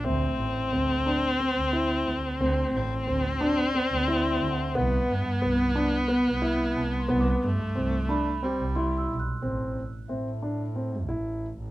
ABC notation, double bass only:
X:1
M:7/8
L:1/16
Q:1/4=90
K:Dmix
V:1 name="Double bass" clef=bass
D,,2 A,,, z D,,2 z3 D,,2 z D,, z | D,,2 A,,, z D,,2 z3 D,,2 z D,, z | C,,2 G,, z C,,2 z3 C,,2 z C,, z | C,,2 G,, z C,,2 z3 C,,2 z B,,, z |
A,,,2 z2 A,,6 A,,,3 A,,, |]